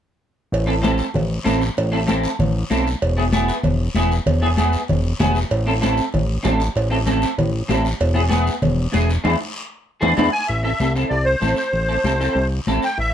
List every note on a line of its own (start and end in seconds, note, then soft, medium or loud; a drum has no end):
0.52 1.02 A1 loud
0.52 cowbell loud
0.52 high conga soft
0.52 long guiro medium
0.66 0.73 C4 medium
0.66 0.73 E4 medium
0.66 0.73 A4 medium
0.82 1.04 C4 medium
0.82 1.05 E4 medium
0.82 1.05 A4 medium
0.82 cowbell medium
0.82 high conga medium
0.82 short guiro medium
0.98 short guiro medium
1.14 1.39 A1 medium
1.14 cowbell medium
1.14 high conga soft
1.14 low conga medium
1.14 long guiro medium
1.44 1.71 A1 medium
1.44 1.61 C4 medium
1.44 1.61 E4 medium
1.44 1.62 A4 medium
1.44 cowbell medium
1.44 high conga medium
1.44 short guiro medium
1.62 short guiro medium
1.77 2.27 A1 loud
1.77 cowbell loud
1.77 high conga soft
1.77 long guiro medium
1.92 1.97 C4 medium
1.92 1.98 E4 medium
1.92 1.98 A4 medium
2.07 2.29 C4 medium
2.07 2.30 E4 medium
2.07 2.29 A4 medium
2.07 cowbell medium
2.07 high conga medium
2.07 short guiro medium
2.24 short guiro medium
2.39 2.64 A1 loud
2.39 cowbell medium
2.39 high conga soft
2.39 low conga medium
2.39 long guiro medium
2.70 2.96 B1 medium
2.70 2.87 C4 medium
2.70 2.87 E4 medium
2.70 2.87 A4 medium
2.70 cowbell medium
2.70 high conga medium
2.70 short guiro medium
2.87 short guiro medium
3.02 3.52 E1 medium
3.02 cowbell loud
3.02 high conga soft
3.02 long guiro medium
3.17 3.23 B3 medium
3.17 3.23 E4 medium
3.17 3.23 G#4 medium
3.32 3.54 B3 medium
3.32 3.55 E4 medium
3.32 3.55 G#4 medium
3.32 cowbell medium
3.32 high conga medium
3.32 short guiro medium
3.48 short guiro medium
3.63 3.89 E1 medium
3.63 cowbell medium
3.63 high conga soft
3.63 low conga medium
3.63 long guiro medium
3.95 4.20 E1 medium
3.95 4.12 B3 medium
3.95 4.12 E4 medium
3.95 4.12 G#4 medium
3.95 cowbell medium
3.95 high conga medium
3.95 short guiro medium
4.11 short guiro medium
4.26 4.77 E1 medium
4.26 cowbell loud
4.26 high conga soft
4.26 low conga medium
4.26 long guiro medium
4.42 4.47 B3 medium
4.42 4.47 E4 medium
4.42 4.48 G#4 medium
4.57 4.79 B3 medium
4.57 4.79 E4 medium
4.57 4.79 G#4 medium
4.57 cowbell medium
4.57 high conga medium
4.57 short guiro medium
4.73 short guiro medium
4.88 5.14 E1 medium
4.88 cowbell medium
4.88 high conga soft
4.88 low conga medium
4.88 long guiro medium
5.19 5.45 E1 medium
5.19 5.36 B3 medium
5.19 5.36 E4 medium
5.19 5.36 G#4 medium
5.19 cowbell medium
5.19 high conga medium
5.19 low conga medium
5.19 low timbale medium
5.19 short guiro medium
5.35 short guiro medium
5.51 6.01 A1 medium
5.51 cowbell loud
5.51 high conga soft
5.51 long guiro medium
5.66 5.72 C4 medium
5.66 5.72 E4 medium
5.66 5.73 A4 medium
5.81 6.03 C4 medium
5.81 6.04 E4 medium
5.81 6.04 A4 medium
5.81 cowbell medium
5.81 high conga medium
5.81 short guiro medium
5.97 short guiro medium
6.13 6.39 A1 medium
6.13 cowbell medium
6.13 high conga soft
6.13 low conga medium
6.13 long guiro medium
6.43 6.70 A1 medium
6.43 6.60 C4 medium
6.43 6.60 E4 medium
6.43 6.61 A4 medium
6.43 cowbell medium
6.43 high conga medium
6.43 low timbale medium
6.43 short guiro medium
6.60 short guiro medium
6.76 7.26 A1 medium
6.76 cowbell loud
6.76 high conga soft
6.76 long guiro medium
6.90 6.96 C4 medium
6.90 6.97 E4 medium
6.90 6.97 A4 medium
7.06 7.28 C4 medium
7.06 7.28 E4 medium
7.06 7.29 A4 medium
7.06 cowbell medium
7.06 high conga medium
7.06 short guiro medium
7.22 short guiro medium
7.38 7.63 A1 medium
7.38 cowbell medium
7.38 high conga soft
7.38 low conga medium
7.38 long guiro medium
7.68 7.94 A1 medium
7.68 7.85 C4 medium
7.68 7.85 E4 medium
7.68 7.85 A4 medium
7.68 cowbell medium
7.68 high conga medium
7.68 low timbale medium
7.68 short guiro medium
7.85 short guiro medium
8.00 8.50 E1 loud
8.00 cowbell loud
8.00 high conga soft
8.00 long guiro medium
8.14 8.20 B3 medium
8.14 8.21 E4 medium
8.14 8.21 G#4 medium
8.29 8.52 B3 medium
8.29 8.52 E4 medium
8.29 8.52 G#4 medium
8.29 cowbell medium
8.29 high conga medium
8.29 short guiro medium
8.47 short guiro medium
8.62 8.88 E1 loud
8.62 cowbell medium
8.62 high conga soft
8.62 low conga medium
8.62 long guiro medium
8.92 9.18 E1 loud
8.92 9.09 B3 medium
8.92 9.09 E4 medium
8.92 9.10 G#4 medium
8.92 cowbell medium
8.92 high conga medium
8.92 short guiro medium
9.10 short guiro medium
9.24 9.36 E2 loud
9.24 9.34 D4 medium
9.24 9.34 E4 medium
9.24 9.34 G#4 medium
9.24 high conga medium
9.24 high timbale loud
9.24 long guiro medium
10.01 10.14 E2 medium
10.01 10.12 D4 medium
10.01 10.11 E4 medium
10.01 10.11 G#4 loud
10.01 high conga medium
10.01 high timbale medium
10.01 long guiro medium
10.17 10.29 E2 medium
10.17 10.27 D4 medium
10.17 10.27 E4 medium
10.17 10.27 G#4 medium
10.17 high conga medium
10.17 high timbale loud
10.17 long guiro loud
10.32 10.47 G#5 loud
10.48 10.74 A1 medium
10.48 10.62 E5 medium
10.48 high conga soft
10.48 long guiro medium
10.63 10.69 C4 medium
10.63 10.69 E4 medium
10.63 10.70 A4 medium
10.63 10.93 E5 medium
10.80 11.05 C2 medium
10.80 10.86 C4 medium
10.80 10.86 E4 medium
10.80 10.86 A4 medium
10.80 high conga medium
10.80 short guiro medium
10.96 11.12 C4 medium
10.96 11.12 E4 soft
10.96 11.12 A4 medium
10.96 short guiro medium
11.09 11.36 C2 medium
11.09 11.25 D5 medium
11.09 high conga soft
11.09 long guiro medium
11.25 11.55 C5 medium
11.41 11.54 A1 medium
11.41 11.58 C4 medium
11.41 11.58 E4 medium
11.41 11.58 A4 medium
11.41 high conga medium
11.41 short guiro medium
11.57 12.47 C5 medium
11.57 short guiro medium
11.73 11.98 A1 medium
11.73 high conga soft
11.73 long guiro medium
11.89 11.94 C4 medium
11.89 11.94 E4 medium
11.89 11.94 A4 medium
12.04 12.29 C2 medium
12.04 12.10 C4 medium
12.04 12.10 E4 medium
12.04 12.10 A4 medium
12.04 high conga medium
12.04 short guiro medium
12.20 12.36 C4 medium
12.20 12.36 E4 medium
12.20 12.37 A4 medium
12.20 short guiro medium
12.35 12.60 C2 medium
12.35 high conga soft
12.35 long guiro medium
12.67 12.80 A1 medium
12.67 12.83 C4 medium
12.67 12.84 E4 medium
12.67 12.84 A4 medium
12.67 high conga medium
12.67 short guiro medium
12.83 12.98 G5 medium
12.83 short guiro medium
12.98 13.14 A1 medium
12.98 13.13 E5 loud
12.98 high conga soft
12.98 long guiro medium